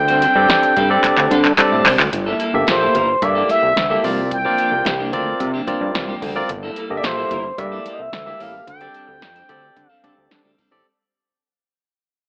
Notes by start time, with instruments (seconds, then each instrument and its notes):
Already playing: analog synth bass D2, analog synth lead G5
0.08 clean electric guitar G3 C4 D4 C5, closed hi-hat
0.22 clean electric guitar G3 C4 D4 A4, closed hi-hat
0.35 analog synth bass G2, tine electric piano C4 D4 G4 A4 D5, muted clean electric guitar stroke
0.49 snare, closed hi-hat, high conga
0.63 muted clean electric guitar stroke, closed hi-hat
0.76 analog synth bass G2, clean electric guitar G3 C4 D4 A4, kick, closed hi-hat
0.90 tine electric piano C4 D4 G4 A4 D5, muted clean electric guitar stroke
1.04 muted clean electric guitar stroke, kick, clap, closed hi-hat, muted conga
1.17 analog synth bass D2, muted clean electric guitar stroke, clap
1.31 analog synth bass D3, clean electric guitar G3 C4 D4 A4, closed hi-hat, muted conga
1.45 muted clean electric guitar stroke, clap
1.58 tine electric piano C4 D4 G4 A4 D5, muted clean electric guitar stroke, clap, closed hi-hat, high conga
1.72 analog synth bass A2, clean electric guitar G3 C4 D4 A4
1.86 analog synth bass C2, clean electric guitar G3 C4 D4 A4, clap, open hi-hat, high conga
1.99 analog synth bass D2, muted clean electric guitar stroke, clap
2.13 analog synth bass G1, muted clean electric guitar stroke, kick, closed hi-hat, muted conga
2.26 clean electric guitar G3 A#3 E4 A4
2.40 clean electric guitar G3 A#3 E4 A4, closed hi-hat
2.54 analog synth bass G1, tine electric piano A#3 G4 A4 E5, muted clean electric guitar stroke
2.67 analog synth bass A#1, analog synth lead C5, muted clean electric guitar stroke, snare, closed hi-hat, high conga
2.81 clean electric guitar G3 A#3 E4 A4
2.95 analog synth bass G1, clean electric guitar G3 A#3 E4 A#4, kick, closed hi-hat, low conga
3.09 muted clean electric guitar stroke
3.22 analog synth bass G2, tine electric piano A#3 G4 A4 E5, analog synth lead D5, muted clean electric guitar stroke, kick, closed hi-hat, muted conga
3.35 clean electric guitar G3 A#3 E4 A4
3.49 clean electric guitar G3 A#3 E4 A4, analog synth lead E5, closed hi-hat, muted conga
3.63 analog synth bass C2, muted clean electric guitar stroke
3.76 analog synth bass D2, snare, closed hi-hat, high conga
3.90 clean electric guitar G3 A#3 E4 A4, tine electric piano A#3 G4 A4 E5, high conga
4.04 analog synth bass C2, clean electric guitar F3 A#3 D4 G4, tine electric piano C4 F4 A#4 D5, open hi-hat, high conga
4.18 muted clean electric guitar stroke
4.31 analog synth lead G5, muted clean electric guitar stroke, kick, closed hi-hat
4.45 clean electric guitar F3 A#3 D4 G4, tine electric piano C4 F4 A#4 D5
4.58 clean electric guitar F3 A#3 D4 G4, closed hi-hat
4.72 analog synth bass C2, muted clean electric guitar stroke
4.85 analog synth bass C2, muted clean electric guitar stroke, snare, closed hi-hat, high conga
4.99 clean electric guitar F3 A#3 D4 G4
5.13 analog synth bass D2, clean electric guitar F3 A#3 D4 A4, tine electric piano C4 F4 A#4 D5, kick, closed hi-hat, low conga
5.27 muted clean electric guitar stroke
5.40 analog synth bass C3, muted clean electric guitar stroke, kick, closed hi-hat, muted conga
5.54 clean electric guitar F3 A#3 D4 G4
5.67 clean electric guitar F3 A#3 D4 G4, tine electric piano C4 F4 A#4 D5, kick, closed hi-hat, muted conga
5.81 analog synth bass G2, muted clean electric guitar stroke
5.94 analog synth bass C2, snare, closed hi-hat, high conga
6.08 clean electric guitar F3 A#3 D4 G4, high conga
6.22 analog synth bass D2, clean electric guitar F3 A#3 D4 G4, kick, open hi-hat, high conga
6.35 tine electric piano C4 F4 A#4 D5, muted clean electric guitar stroke
6.49 analog synth bass G1, muted clean electric guitar stroke, kick, closed hi-hat, muted conga
6.63 clean electric guitar G3 A#3 E4 A4
6.76 clean electric guitar G3 A#3 E4 A4, closed hi-hat
6.90 analog synth bass G1, tine electric piano A#3 G4 A4 D#5, muted clean electric guitar stroke
6.97 analog synth lead D5, tine electric piano E5
7.03 analog synth bass A#1, analog synth lead C5, muted clean electric guitar stroke, snare, closed hi-hat, high conga
7.17 clean electric guitar G3 A#3 E4 A4
7.31 analog synth bass G1, clean electric guitar G3 A#3 E4 A#4, kick, closed hi-hat, low conga
7.45 muted clean electric guitar stroke
7.58 analog synth bass G2, tine electric piano A#3 G4 A4 E5, analog synth lead D5, muted clean electric guitar stroke, kick, closed hi-hat, muted conga
7.72 clean electric guitar G3 A#3 E4 A4
7.85 clean electric guitar G3 A#3 E4 A4, closed hi-hat, muted conga
7.93 analog synth lead D#5
7.99 analog synth bass C2, analog synth lead E5, muted clean electric guitar stroke
8.12 analog synth bass D2, snare, closed hi-hat, high conga
8.26 clean electric guitar G3 A#3 E4 A4, tine electric piano A#3 G4 A4 E5, high conga
8.40 analog synth bass A1, clean electric guitar G3 A#3 E4 A4, analog synth lead F5, open hi-hat, high conga
8.54 muted clean electric guitar stroke
8.67 analog synth bass D2, analog synth lead G5, muted clean electric guitar stroke, kick, closed hi-hat
8.81 clean electric guitar G3 C4 D4 A4, tine electric piano C4 G4 A4 D5, closed hi-hat
8.94 clean electric guitar G3 C4 D4 A4, closed hi-hat
9.08 analog synth bass D2, muted clean electric guitar stroke
9.21 analog synth bass F2, snare, closed hi-hat, high conga
9.35 clean electric guitar G3 C4 D4 A4, closed hi-hat
9.49 analog synth bass D2, clean electric guitar G3 C4 D4 C5, tine electric piano C4 G4 A4 D5, kick, closed hi-hat, low conga
9.63 muted clean electric guitar stroke
9.76 analog synth bass D3, muted clean electric guitar stroke, kick, closed hi-hat, muted conga
9.90 clean electric guitar G3 C4 D4 A4, analog synth lead F5
10.03 analog synth bass D3, clean electric guitar G3 C4 D4 A4, tine electric piano C4 G4 A4 D5, kick, closed hi-hat, muted conga
10.17 analog synth bass D2, muted clean electric guitar stroke
10.31 analog synth bass D3, snare, closed hi-hat, high conga
10.44 analog synth bass D2, clean electric guitar G3 C4 D4 A4, high conga
10.58 clean electric guitar G3 C4 D4 A4, kick, open hi-hat, high conga
10.71 analog synth bass A1, tine electric piano C4 G4 A4 D5, muted clean electric guitar stroke